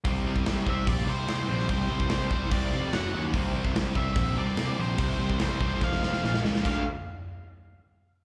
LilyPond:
<<
  \new Staff \with { instrumentName = "Lead electric guitar" } { \time 4/4 \key c \mixolydian \tempo 4 = 146 r4. e''8 d''8 c''4 c''8 | c''4 c''4 d''4 fis''8. r16 | r4. e''4 d''4 c''8~ | c''4 c''4 f''4. r8 |
f''8 r2. r8 | }
  \new Staff \with { instrumentName = "Distorted electric guitar" } { \time 4/4 \key c \mixolydian <c g c' e' g' c''>8 <c g c' e' g' c''>8 <c g c' e' g' c''>8 <c g c' e' g' c''>8 <c g c' e' g' c''>8 <c g c' e' g' c''>8 <c g c' e' g' c''>8 <c g c' e' g' c''>8 | <c g c' e' g' c''>8 <c g c' e' g' c''>8 <c g c' e' g' c''>8 <c g c' e' g' c''>8 <c g c' e' g' c''>8 <c g c' e' g' c''>8 <fis cis' fis' cis''>8 <fis cis' fis' cis''>8 | <c e g c' e' c''>8 <c e g c' e' c''>8 <c e g c' e' c''>8 <c e g c' e' c''>8 <c e g c' e' c''>8 <c e g c' e' c''>8 <c e g c' e' c''>8 <c e g c' e' c''>8 | <c e g c' e' c''>8 <c e g c' e' c''>8 <c e g c' e' c''>8 <c e g c' e' c''>8 <f c' f' c''>8 <f c' f' c''>8 <bes, f bes f'>8 <bes, f bes f'>8 |
<d a d' f'>8 r2. r8 | }
  \new Staff \with { instrumentName = "Overdriven electric guitar" } { \clef bass \time 4/4 \key c \mixolydian <c g c'>8 <c g c'>8 <c g c'>8 <c g c'>8 <c g c'>8 <c g c'>8 <c g c'>8 <c g c'>8 | <c g c'>8 <c g c'>8 <c g c'>8 <c g c'>8 <c g c'>8 <c g c'>8 <fis, cis fis>8 <fis, cis fis>8 | <c g c'>8 <c g c'>8 <c g c'>8 <c g c'>8 <c g c'>8 <c g c'>8 <c g c'>8 <c g c'>8 | <c g c'>8 <c g c'>8 <c g c'>8 <c g c'>8 <f, c f>8 <f, c f>8 <bes, f bes>8 <bes, f bes>8 |
<d a d'>8 r2. r8 | }
  \new Staff \with { instrumentName = "Picked electric bass" } { \clef bass \time 4/4 \key c \mixolydian c,4 c,8 c,8 bes,,8 c,8 c,8 bes,,8 | c,8 c,8 c,8 c,8 c,8 f,,8 fis,,8 ees,8 | c,4 c,8 c,8 bes,,8 c,8 c,8 bes,,8 | c,8 c,8 c,8 c,8 f,,8 f,,8 bes,,8 cis,8 |
d,8 r2. r8 | }
  \new DrumStaff \with { instrumentName = "Drums" } \drummode { \time 4/4 <hho bd>8. bd16 <hho sn>8 bd8 <hho bd>4 <hho sn>8. sn16 | <hho bd>8. bd16 <hho sn>8 bd8 <hho bd>4 <hho sn>4 | <hho bd>8. bd16 <hho sn>8 bd8 <hho bd>4 <hho sn>4 | <hho bd>8. bd16 <hho sn>8 bd8 <bd sn>16 sn16 sn16 sn16 sn16 sn16 sn16 sn16 |
<cymc bd>4 r4 r4 r4 | }
>>